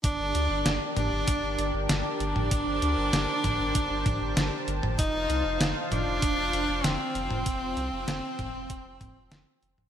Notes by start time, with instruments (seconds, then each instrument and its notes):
0.04 analog synth bass G1, string machine D4, tenor saxophone D4, analog synth pad G4 A#4 D5 A5, kick, closed hi-hat
0.20 analog synth bass G1
0.35 analog synth bass D2, closed hi-hat
0.50 analog synth bass G1
0.66 analog synth bass G1, snare, closed hi-hat
0.97 analog synth bass G1, string machine D4, tenor saxophone D4, closed hi-hat, mid tom
1.12 analog synth bass G1
1.28 analog synth bass G1, kick, closed hi-hat
1.43 analog synth bass G1
1.58 analog synth bass G1, closed hi-hat
1.74 analog synth bass G1
1.89 analog synth bass G1, string machine D4, tenor saxophone D4, snare, closed hi-hat
2.20 analog synth bass G1, closed hi-hat
2.36 analog synth bass G1, mid tom
2.51 analog synth bass G1, analog synth pad C5, kick, closed hi-hat
2.67 analog synth bass G1
2.82 analog synth bass D2, closed hi-hat
2.98 analog synth bass G1
3.13 analog synth bass G1, snare, closed hi-hat
3.44 analog synth bass G1, kick, closed hi-hat, mid tom
3.60 analog synth bass G1
3.75 analog synth bass G1, kick, closed hi-hat
3.90 analog synth bass G1
4.06 analog synth bass G1, kick, closed hi-hat, mid tom
4.21 analog synth bass G1
4.37 analog synth bass G1, snare, closed hi-hat
4.68 analog synth bass G1, closed hi-hat
4.83 analog synth bass G1, mid tom
4.99 analog synth bass F1, string machine D#4, tenor saxophone D#4, analog synth pad F4 C5 F5, kick, closed hi-hat
5.14 analog synth bass F1
5.30 analog synth bass C2, closed hi-hat
5.45 analog synth bass F1
5.61 analog synth bass F1, snare, closed hi-hat
5.91 analog synth bass F1, string machine D4, tenor saxophone D4, closed hi-hat, mid tom
6.07 analog synth bass F1
6.22 analog synth bass F1, kick, closed hi-hat
6.38 analog synth bass F1
6.53 analog synth bass F1, closed hi-hat
6.69 analog synth bass F1
6.84 analog synth bass F1, string machine C4, tenor saxophone C4, snare, closed hi-hat
7.15 analog synth bass F1, closed hi-hat
7.31 analog synth bass F1, mid tom
7.46 analog synth bass F1, kick, closed hi-hat
7.62 analog synth bass F1
7.77 analog synth bass C2, closed hi-hat
7.92 analog synth bass F1
8.08 analog synth bass F1, snare, closed hi-hat
8.39 analog synth bass F1, kick, closed hi-hat, mid tom
8.54 analog synth bass F1
8.70 analog synth bass F1, kick, closed hi-hat
8.85 analog synth bass F1
9.01 analog synth bass F1, kick, closed hi-hat, mid tom
9.16 analog synth bass F1
9.32 analog synth bass F1, snare, closed hi-hat
9.63 analog synth bass F1, closed hi-hat
9.78 analog synth bass F1, mid tom